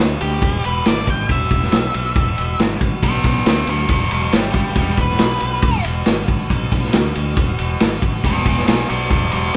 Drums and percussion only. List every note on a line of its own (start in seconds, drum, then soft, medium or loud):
0.21 ride medium
0.42 kick loud
0.42 ride medium
0.64 ride medium
0.86 snare loud
0.86 ride medium
0.97 snare soft
1.07 kick medium
1.07 ride medium
1.29 kick medium
1.29 ride medium
1.51 kick medium
1.51 ride medium
1.62 snare soft
1.72 snare loud
1.72 ride medium
1.94 ride medium
2.16 kick loud
2.16 ride medium
2.38 ride medium
2.59 snare loud
2.59 ride medium
2.71 snare soft
2.81 kick medium
2.81 ride medium
3.03 kick medium
3.03 ride medium
3.24 kick medium
3.24 ride medium
3.46 snare loud
3.46 ride medium
3.67 ride medium
3.89 kick loud
3.89 ride medium
4.11 ride medium
4.33 snare loud
4.33 ride medium
4.54 kick medium
4.54 ride medium
4.75 kick medium
4.75 ride medium
4.97 kick medium
4.97 ride medium
5.09 snare soft
5.19 snare loud
5.19 ride medium
5.40 ride medium
5.62 kick loud
5.62 ride medium
5.84 ride medium
6.06 snare loud
6.06 ride medium
6.28 kick medium
6.28 ride medium
6.50 kick medium
6.50 ride medium
6.72 kick medium
6.72 ride medium
6.83 snare soft
6.93 snare loud
6.93 ride medium
7.15 ride medium
7.37 kick loud
7.37 ride medium
7.59 ride medium
7.80 snare loud
7.80 ride medium
8.02 kick medium
8.02 ride medium
8.24 kick medium
8.24 ride medium
8.46 kick medium
8.46 ride medium
8.58 snare soft
8.68 snare loud
8.68 ride medium
8.89 ride medium
9.10 kick loud
9.10 ride medium
9.32 ride medium